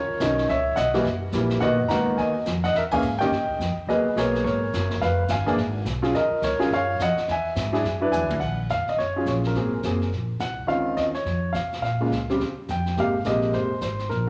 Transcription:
Already playing: A#4 C#5
0.09 muted upright bass stroke
0.20 B1 D#3 F#3 C#4 D#4, snare, hi-hat pedal
0.38 snare
0.49 C#2 C#5 E5, brush sweep, snare
0.76 B1 D#5 F#5, snare, hi-hat pedal
0.94 E3 G3 A#3 F#4, snare
1.04 F#1, brush sweep, snare
1.32 A#1 E3 G3 A#3 E4, snare, hi-hat pedal
1.50 snare
1.61 B1 D#3 A#3 B3 F#4 D#5 F#5, brush sweep, snare
1.71 A#1
1.80 F#1
1.88 C#2 D#3 A#3 B3 F#4 F#5 A#5, snare, hi-hat pedal
2.18 D#2 D#5 G#5, brush sweep, snare
2.46 F2, snare, hi-hat pedal
2.64 D#5 F#5, snare
2.74 E2 A#4 E5, brush sweep, snare
2.91 E3 A#3 C#4 G#4 F5 G#5, kick, crash
3.02 G#2, hi-hat pedal
3.19 D#3 A#3 C#4 G4 D#5 G5, snare
3.30 G2, brush sweep, snare
3.49 muted upright bass stroke, kick
3.59 F2, snare, hi-hat pedal
3.76 muted upright bass stroke
3.87 D#2 F#3 A#3 B3 G#4 B4 D#5, brush sweep, snare
4.06 muted upright bass stroke
4.16 B1 F#3 A#3 B3 G#4 A#4 C#5, snare, hi-hat pedal
4.35 snare
4.44 G#1 A#4 C#5, brush sweep, snare
4.73 F#1, snare, hi-hat pedal
4.90 snare
5.02 F1 B4 F5, brush sweep, snare
5.28 G1 F5 G#5, snare, hi-hat pedal
5.46 E3 A#3 D4 G#4, snare
5.57 G#1, brush sweep, snare
5.85 B1, snare, hi-hat pedal
6.02 F#3 C#4 F4 G#4, snare
6.14 D#2 A#4 D#5, brush sweep, snare
6.31 muted upright bass stroke
6.42 C#2 A#4 C#5, snare, hi-hat pedal
6.59 F#3 C#4 F4 G#4, muted upright bass stroke, snare
6.70 F#2 C#5 F5, brush sweep, snare
6.99 F2 D#5 F#5, snare, hi-hat pedal
7.16 muted upright bass stroke, snare
7.28 E2 E5 G#5, brush sweep, snare
7.56 G#2, snare, hi-hat pedal
7.72 F#3 D4 E4 G#4, snare
7.84 F#2, brush sweep, snare
8.01 F#3 D4 E4 B4
8.12 E2 G#5, hi-hat pedal, mid tom
8.22 D2
8.30 B1, mid tom
8.40 A#1 F#5, brush sweep, kick, snare, ride
8.69 F1 F5, snare, hi-hat pedal
8.87 D#5, muted upright bass stroke, snare
8.96 F#1 C#5, brush sweep, snare
9.16 F#3 C#4 F4 G#4
9.25 A#1 C#5, snare, hi-hat pedal
9.44 A#4, snare
9.54 G#1 F#3 A#3 C4 G#4, brush sweep, snare
9.83 F#1 F#3 A#3 C4 G#4, snare, hi-hat pedal
10.01 snare
10.12 A#1, brush sweep, snare
10.40 C2 F#5, snare, hi-hat pedal
10.67 C#2 D#3 C4 C#4 F4 F5, brush sweep, snare
10.97 D#2 D#5, snare, hi-hat pedal
11.14 C#5, snare
11.25 F2, brush sweep, snare
11.53 C3 F5, snare, hi-hat pedal
11.72 snare
11.81 A#2 F5, brush sweep, snare
12.00 C#3 G#3 A#3 F4
12.11 C#2, snare, hi-hat pedal
12.29 C#3 G3 C4 G4, snare
12.39 D#2, brush sweep, snare
12.68 F2 G5, snare, hi-hat pedal
12.86 snare
12.97 G#1 C3 G#3 A#3 G4 F5, brush sweep, snare
13.24 A#1 C3 G#3 A#3 G4 D#5, snare, hi-hat pedal
13.42 snare
13.53 G1 C5, brush sweep, snare
13.70 muted upright bass stroke
13.81 G#1 C5, snare, hi-hat pedal
13.99 snare
14.09 A#1 A#4, brush sweep, snare

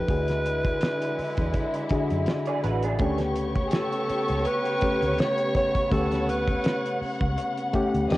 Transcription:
Already playing: D#4 B4
0.08 D2 D3 G#3 D4 E4 F#4 G#4, kick, closed hi-hat
0.28 snare, closed hi-hat
0.46 closed hi-hat
0.65 kick, closed hi-hat
0.81 snare, closed hi-hat
1.02 closed hi-hat
1.19 muted fingered electric bass stroke, open hi-hat
1.37 E2, kick, closed hi-hat
1.54 kick, closed hi-hat
1.74 closed hi-hat
1.89 D3 D4 F#4 G#4, muted fingered electric bass stroke, kick, closed hi-hat
2.10 F#2, closed hi-hat
2.26 snare, closed hi-hat
2.46 G#4 D5, closed hi-hat
2.63 A1 F#4 B4, closed hi-hat
2.83 D4 G#4, closed hi-hat
2.99 D2 C#3 A3 B3 C#4 G4 C#5 C#6, kick, closed hi-hat
3.18 snare, closed hi-hat
3.36 closed hi-hat
3.55 kick, closed hi-hat
3.67 G#4, closed hi-hat
3.73 A4, snare
3.92 closed hi-hat
4.09 muted fingered electric bass stroke, closed hi-hat
4.28 C#2, closed hi-hat
4.45 B4, closed hi-hat
4.65 closed hi-hat
4.81 A3 C#4 G4, muted fingered electric bass stroke, kick, closed hi-hat
5.02 D2, closed hi-hat
5.18 C#5, snare, closed hi-hat
5.38 closed hi-hat
5.55 C#5, kick, closed hi-hat
5.75 kick, closed hi-hat
5.91 D2 A3 C#4 G4 A4 F#5, kick, closed hi-hat
6.12 snare, closed hi-hat
6.29 B4, closed hi-hat
6.48 kick, closed hi-hat
6.64 snare, closed hi-hat
6.86 closed hi-hat
7.01 muted fingered electric bass stroke, open hi-hat
7.21 C#2, kick, closed hi-hat
7.38 closed hi-hat
7.57 closed hi-hat
7.73 A3 C#4 G4, muted fingered electric bass stroke, kick, closed hi-hat
7.94 D2, closed hi-hat
8.10 D#2 D#3 A#3 D4 G4 D#5 D#6, snare, closed hi-hat

